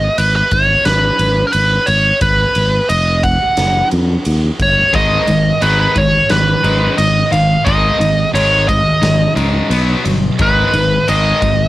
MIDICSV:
0, 0, Header, 1, 5, 480
1, 0, Start_track
1, 0, Tempo, 681818
1, 1557, Time_signature, 4, 2, 24, 8
1, 8224, End_track
2, 0, Start_track
2, 0, Title_t, "Lead electric guitar"
2, 0, Program_c, 0, 29
2, 0, Note_on_c, 0, 75, 102
2, 127, Note_on_c, 0, 71, 75
2, 139, Note_off_c, 0, 75, 0
2, 236, Note_off_c, 0, 71, 0
2, 254, Note_on_c, 0, 71, 79
2, 366, Note_on_c, 0, 73, 85
2, 372, Note_off_c, 0, 71, 0
2, 586, Note_off_c, 0, 73, 0
2, 599, Note_on_c, 0, 71, 86
2, 1032, Note_off_c, 0, 71, 0
2, 1035, Note_on_c, 0, 70, 58
2, 1071, Note_off_c, 0, 70, 0
2, 1074, Note_on_c, 0, 71, 85
2, 1311, Note_on_c, 0, 73, 100
2, 1322, Note_off_c, 0, 71, 0
2, 1536, Note_off_c, 0, 73, 0
2, 1562, Note_on_c, 0, 71, 86
2, 2035, Note_on_c, 0, 75, 89
2, 2052, Note_off_c, 0, 71, 0
2, 2276, Note_on_c, 0, 78, 98
2, 2281, Note_off_c, 0, 75, 0
2, 2726, Note_off_c, 0, 78, 0
2, 3255, Note_on_c, 0, 73, 82
2, 3486, Note_off_c, 0, 73, 0
2, 3488, Note_on_c, 0, 75, 89
2, 3958, Note_on_c, 0, 71, 77
2, 3974, Note_off_c, 0, 75, 0
2, 4075, Note_off_c, 0, 71, 0
2, 4083, Note_on_c, 0, 71, 80
2, 4201, Note_off_c, 0, 71, 0
2, 4210, Note_on_c, 0, 73, 82
2, 4439, Note_on_c, 0, 71, 91
2, 4448, Note_off_c, 0, 73, 0
2, 4888, Note_off_c, 0, 71, 0
2, 4912, Note_on_c, 0, 75, 85
2, 5135, Note_off_c, 0, 75, 0
2, 5154, Note_on_c, 0, 77, 97
2, 5383, Note_on_c, 0, 75, 99
2, 5401, Note_off_c, 0, 77, 0
2, 5841, Note_off_c, 0, 75, 0
2, 5876, Note_on_c, 0, 73, 97
2, 6110, Note_off_c, 0, 73, 0
2, 6113, Note_on_c, 0, 75, 90
2, 6567, Note_off_c, 0, 75, 0
2, 7333, Note_on_c, 0, 71, 90
2, 7807, Note_on_c, 0, 75, 102
2, 7822, Note_off_c, 0, 71, 0
2, 8224, Note_off_c, 0, 75, 0
2, 8224, End_track
3, 0, Start_track
3, 0, Title_t, "Distorted electric guitar"
3, 0, Program_c, 1, 30
3, 3473, Note_on_c, 1, 44, 78
3, 3476, Note_on_c, 1, 51, 83
3, 3481, Note_on_c, 1, 56, 93
3, 3698, Note_off_c, 1, 44, 0
3, 3699, Note_off_c, 1, 51, 0
3, 3702, Note_off_c, 1, 56, 0
3, 3712, Note_on_c, 1, 44, 79
3, 3715, Note_on_c, 1, 51, 73
3, 3928, Note_off_c, 1, 44, 0
3, 3929, Note_off_c, 1, 51, 0
3, 3956, Note_on_c, 1, 44, 88
3, 3960, Note_on_c, 1, 51, 93
3, 3962, Note_on_c, 1, 56, 110
3, 4179, Note_off_c, 1, 44, 0
3, 4181, Note_off_c, 1, 51, 0
3, 4182, Note_off_c, 1, 56, 0
3, 4191, Note_on_c, 1, 44, 64
3, 4193, Note_on_c, 1, 51, 61
3, 4407, Note_off_c, 1, 44, 0
3, 4408, Note_off_c, 1, 51, 0
3, 4435, Note_on_c, 1, 44, 63
3, 4437, Note_on_c, 1, 51, 84
3, 4649, Note_off_c, 1, 44, 0
3, 4650, Note_off_c, 1, 51, 0
3, 4670, Note_on_c, 1, 44, 83
3, 4675, Note_on_c, 1, 51, 87
3, 4681, Note_on_c, 1, 56, 103
3, 4897, Note_off_c, 1, 44, 0
3, 4899, Note_off_c, 1, 51, 0
3, 4903, Note_off_c, 1, 56, 0
3, 4906, Note_on_c, 1, 44, 74
3, 4908, Note_on_c, 1, 51, 87
3, 5125, Note_off_c, 1, 44, 0
3, 5127, Note_off_c, 1, 51, 0
3, 5147, Note_on_c, 1, 44, 76
3, 5149, Note_on_c, 1, 51, 80
3, 5366, Note_off_c, 1, 44, 0
3, 5367, Note_off_c, 1, 51, 0
3, 5387, Note_on_c, 1, 44, 89
3, 5394, Note_on_c, 1, 51, 89
3, 5396, Note_on_c, 1, 56, 95
3, 5616, Note_off_c, 1, 44, 0
3, 5620, Note_off_c, 1, 51, 0
3, 5621, Note_off_c, 1, 56, 0
3, 5626, Note_on_c, 1, 44, 70
3, 5627, Note_on_c, 1, 51, 76
3, 5846, Note_off_c, 1, 44, 0
3, 5847, Note_off_c, 1, 51, 0
3, 5870, Note_on_c, 1, 44, 82
3, 5872, Note_on_c, 1, 51, 83
3, 5876, Note_on_c, 1, 56, 99
3, 6098, Note_off_c, 1, 44, 0
3, 6099, Note_off_c, 1, 51, 0
3, 6101, Note_off_c, 1, 56, 0
3, 6106, Note_on_c, 1, 44, 69
3, 6109, Note_on_c, 1, 51, 83
3, 6327, Note_off_c, 1, 44, 0
3, 6329, Note_off_c, 1, 51, 0
3, 6347, Note_on_c, 1, 44, 67
3, 6351, Note_on_c, 1, 51, 80
3, 6568, Note_off_c, 1, 44, 0
3, 6570, Note_off_c, 1, 51, 0
3, 6590, Note_on_c, 1, 44, 83
3, 6595, Note_on_c, 1, 51, 85
3, 6598, Note_on_c, 1, 56, 101
3, 6819, Note_off_c, 1, 44, 0
3, 6822, Note_off_c, 1, 51, 0
3, 6824, Note_off_c, 1, 56, 0
3, 6827, Note_on_c, 1, 47, 94
3, 6833, Note_on_c, 1, 54, 90
3, 6838, Note_on_c, 1, 59, 113
3, 7058, Note_off_c, 1, 47, 0
3, 7061, Note_off_c, 1, 54, 0
3, 7064, Note_off_c, 1, 59, 0
3, 7072, Note_on_c, 1, 47, 69
3, 7074, Note_on_c, 1, 54, 85
3, 7292, Note_off_c, 1, 47, 0
3, 7293, Note_off_c, 1, 54, 0
3, 7315, Note_on_c, 1, 44, 89
3, 7320, Note_on_c, 1, 51, 86
3, 7322, Note_on_c, 1, 56, 91
3, 7543, Note_off_c, 1, 44, 0
3, 7546, Note_off_c, 1, 51, 0
3, 7547, Note_off_c, 1, 56, 0
3, 7560, Note_on_c, 1, 44, 68
3, 7564, Note_on_c, 1, 51, 75
3, 7777, Note_off_c, 1, 44, 0
3, 7779, Note_off_c, 1, 51, 0
3, 7799, Note_on_c, 1, 44, 92
3, 7806, Note_on_c, 1, 51, 93
3, 7808, Note_on_c, 1, 56, 99
3, 8027, Note_off_c, 1, 44, 0
3, 8030, Note_off_c, 1, 51, 0
3, 8031, Note_off_c, 1, 56, 0
3, 8042, Note_on_c, 1, 44, 69
3, 8044, Note_on_c, 1, 51, 74
3, 8224, Note_off_c, 1, 44, 0
3, 8224, Note_off_c, 1, 51, 0
3, 8224, End_track
4, 0, Start_track
4, 0, Title_t, "Fingered electric bass"
4, 0, Program_c, 2, 33
4, 129, Note_on_c, 2, 32, 88
4, 291, Note_off_c, 2, 32, 0
4, 364, Note_on_c, 2, 32, 83
4, 527, Note_off_c, 2, 32, 0
4, 608, Note_on_c, 2, 32, 94
4, 769, Note_off_c, 2, 32, 0
4, 839, Note_on_c, 2, 32, 81
4, 1003, Note_off_c, 2, 32, 0
4, 1088, Note_on_c, 2, 32, 86
4, 1249, Note_off_c, 2, 32, 0
4, 1324, Note_on_c, 2, 32, 92
4, 1486, Note_off_c, 2, 32, 0
4, 1558, Note_on_c, 2, 32, 92
4, 1721, Note_off_c, 2, 32, 0
4, 1803, Note_on_c, 2, 32, 82
4, 1964, Note_off_c, 2, 32, 0
4, 2041, Note_on_c, 2, 29, 88
4, 2367, Note_off_c, 2, 29, 0
4, 2518, Note_on_c, 2, 30, 91
4, 2681, Note_off_c, 2, 30, 0
4, 2764, Note_on_c, 2, 41, 81
4, 2924, Note_off_c, 2, 41, 0
4, 3001, Note_on_c, 2, 39, 80
4, 3163, Note_off_c, 2, 39, 0
4, 3233, Note_on_c, 2, 31, 80
4, 3397, Note_off_c, 2, 31, 0
4, 3479, Note_on_c, 2, 32, 88
4, 3641, Note_off_c, 2, 32, 0
4, 3718, Note_on_c, 2, 32, 82
4, 3881, Note_off_c, 2, 32, 0
4, 3957, Note_on_c, 2, 32, 98
4, 4120, Note_off_c, 2, 32, 0
4, 4196, Note_on_c, 2, 32, 80
4, 4359, Note_off_c, 2, 32, 0
4, 4437, Note_on_c, 2, 32, 77
4, 4600, Note_off_c, 2, 32, 0
4, 4674, Note_on_c, 2, 32, 83
4, 4838, Note_off_c, 2, 32, 0
4, 4917, Note_on_c, 2, 32, 92
4, 5080, Note_off_c, 2, 32, 0
4, 5153, Note_on_c, 2, 32, 86
4, 5318, Note_off_c, 2, 32, 0
4, 5396, Note_on_c, 2, 32, 89
4, 5560, Note_off_c, 2, 32, 0
4, 5632, Note_on_c, 2, 32, 76
4, 5798, Note_off_c, 2, 32, 0
4, 5870, Note_on_c, 2, 32, 90
4, 6202, Note_off_c, 2, 32, 0
4, 6349, Note_on_c, 2, 32, 83
4, 6517, Note_off_c, 2, 32, 0
4, 6591, Note_on_c, 2, 37, 83
4, 6758, Note_off_c, 2, 37, 0
4, 6831, Note_on_c, 2, 35, 92
4, 6998, Note_off_c, 2, 35, 0
4, 7080, Note_on_c, 2, 31, 82
4, 7244, Note_off_c, 2, 31, 0
4, 7317, Note_on_c, 2, 32, 98
4, 7483, Note_off_c, 2, 32, 0
4, 7556, Note_on_c, 2, 32, 92
4, 7723, Note_off_c, 2, 32, 0
4, 7804, Note_on_c, 2, 32, 86
4, 7968, Note_off_c, 2, 32, 0
4, 8038, Note_on_c, 2, 32, 86
4, 8204, Note_off_c, 2, 32, 0
4, 8224, End_track
5, 0, Start_track
5, 0, Title_t, "Drums"
5, 126, Note_on_c, 9, 51, 81
5, 197, Note_off_c, 9, 51, 0
5, 362, Note_on_c, 9, 51, 59
5, 364, Note_on_c, 9, 36, 76
5, 432, Note_off_c, 9, 51, 0
5, 434, Note_off_c, 9, 36, 0
5, 600, Note_on_c, 9, 51, 80
5, 604, Note_on_c, 9, 38, 97
5, 671, Note_off_c, 9, 51, 0
5, 675, Note_off_c, 9, 38, 0
5, 839, Note_on_c, 9, 51, 68
5, 909, Note_off_c, 9, 51, 0
5, 1075, Note_on_c, 9, 51, 81
5, 1146, Note_off_c, 9, 51, 0
5, 1316, Note_on_c, 9, 51, 60
5, 1386, Note_off_c, 9, 51, 0
5, 1556, Note_on_c, 9, 51, 95
5, 1558, Note_on_c, 9, 36, 109
5, 1627, Note_off_c, 9, 51, 0
5, 1628, Note_off_c, 9, 36, 0
5, 1795, Note_on_c, 9, 51, 65
5, 1866, Note_off_c, 9, 51, 0
5, 2038, Note_on_c, 9, 51, 85
5, 2108, Note_off_c, 9, 51, 0
5, 2277, Note_on_c, 9, 51, 63
5, 2278, Note_on_c, 9, 36, 79
5, 2348, Note_off_c, 9, 36, 0
5, 2348, Note_off_c, 9, 51, 0
5, 2513, Note_on_c, 9, 51, 86
5, 2517, Note_on_c, 9, 38, 107
5, 2583, Note_off_c, 9, 51, 0
5, 2587, Note_off_c, 9, 38, 0
5, 2755, Note_on_c, 9, 51, 56
5, 2825, Note_off_c, 9, 51, 0
5, 2992, Note_on_c, 9, 51, 74
5, 3063, Note_off_c, 9, 51, 0
5, 3235, Note_on_c, 9, 51, 57
5, 3236, Note_on_c, 9, 36, 68
5, 3306, Note_off_c, 9, 36, 0
5, 3306, Note_off_c, 9, 51, 0
5, 3474, Note_on_c, 9, 51, 80
5, 3476, Note_on_c, 9, 36, 115
5, 3545, Note_off_c, 9, 51, 0
5, 3546, Note_off_c, 9, 36, 0
5, 3713, Note_on_c, 9, 51, 58
5, 3783, Note_off_c, 9, 51, 0
5, 3954, Note_on_c, 9, 51, 75
5, 4024, Note_off_c, 9, 51, 0
5, 4194, Note_on_c, 9, 51, 61
5, 4195, Note_on_c, 9, 36, 77
5, 4264, Note_off_c, 9, 51, 0
5, 4265, Note_off_c, 9, 36, 0
5, 4432, Note_on_c, 9, 51, 75
5, 4436, Note_on_c, 9, 38, 99
5, 4502, Note_off_c, 9, 51, 0
5, 4506, Note_off_c, 9, 38, 0
5, 4676, Note_on_c, 9, 51, 54
5, 4746, Note_off_c, 9, 51, 0
5, 4915, Note_on_c, 9, 51, 79
5, 4986, Note_off_c, 9, 51, 0
5, 5156, Note_on_c, 9, 51, 56
5, 5227, Note_off_c, 9, 51, 0
5, 5397, Note_on_c, 9, 36, 119
5, 5397, Note_on_c, 9, 51, 94
5, 5467, Note_off_c, 9, 36, 0
5, 5467, Note_off_c, 9, 51, 0
5, 5639, Note_on_c, 9, 51, 66
5, 5710, Note_off_c, 9, 51, 0
5, 5881, Note_on_c, 9, 51, 87
5, 5951, Note_off_c, 9, 51, 0
5, 6116, Note_on_c, 9, 36, 86
5, 6118, Note_on_c, 9, 51, 64
5, 6187, Note_off_c, 9, 36, 0
5, 6189, Note_off_c, 9, 51, 0
5, 6355, Note_on_c, 9, 51, 82
5, 6359, Note_on_c, 9, 38, 103
5, 6426, Note_off_c, 9, 51, 0
5, 6430, Note_off_c, 9, 38, 0
5, 6596, Note_on_c, 9, 51, 58
5, 6666, Note_off_c, 9, 51, 0
5, 6836, Note_on_c, 9, 51, 69
5, 6906, Note_off_c, 9, 51, 0
5, 7078, Note_on_c, 9, 51, 59
5, 7148, Note_off_c, 9, 51, 0
5, 7315, Note_on_c, 9, 51, 84
5, 7317, Note_on_c, 9, 36, 120
5, 7385, Note_off_c, 9, 51, 0
5, 7387, Note_off_c, 9, 36, 0
5, 7557, Note_on_c, 9, 51, 61
5, 7627, Note_off_c, 9, 51, 0
5, 7801, Note_on_c, 9, 51, 74
5, 7871, Note_off_c, 9, 51, 0
5, 8040, Note_on_c, 9, 51, 57
5, 8041, Note_on_c, 9, 36, 76
5, 8110, Note_off_c, 9, 51, 0
5, 8111, Note_off_c, 9, 36, 0
5, 8224, End_track
0, 0, End_of_file